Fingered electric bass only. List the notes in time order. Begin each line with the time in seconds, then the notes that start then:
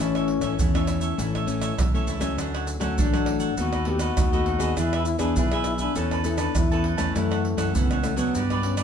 0.00 A1
0.42 A1
0.59 E2
1.19 A1
1.78 B1
2.07 C#2
2.38 D2
2.81 D2
2.98 A1
3.58 D#2
4.18 D#2
4.60 D#2
4.77 E2
5.20 E2
5.37 B1
5.97 E2
6.56 E2
6.98 E2
7.15 F#2
7.57 F#2
7.75 C#2
8.34 G2